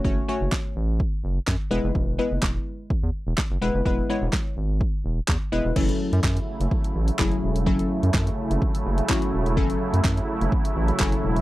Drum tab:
CC |----------------|----------------|----------------|x---------------|
HH |----------------|----------------|----------------|-x-x-x-x-x-x-x-x|
CP |----x-------x---|----x-------x---|----x-------x---|----x-------x---|
SD |----o-------o---|----o-------o---|----o-------o---|----o-------o---|
BD |o---o---o---o---|o---o---o---o---|o---o---o---o---|o---o---o---o---|

CC |----------------|----------------|
HH |-x-x-x-x-x-x-x-x|-x-x-x-x-x-x-x-x|
CP |----x-------x---|----x-------x---|
SD |----o-------o---|----o-------o---|
BD |o---o---o---o---|o---o---o---o---|